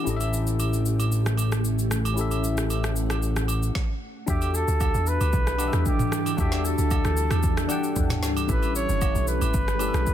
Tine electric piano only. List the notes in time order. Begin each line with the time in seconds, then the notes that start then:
0.03 C#4 E4 G4
0.09 A4 D#5
0.17 E5
2.14 C#4 E4 G4
2.19 A4 E5
4.26 D4 F#4 G4 A4 E5
5.58 D4 G4 A4 D#5 F#5
5.68 E5
6.37 D4 F#4 G4 A4 E5
7.68 D4 G4 A4 F#5 G5
8.47 C#4 E4 G4 A4 E5
9.79 C#4 E4 G4 A4 D5
9.88 E5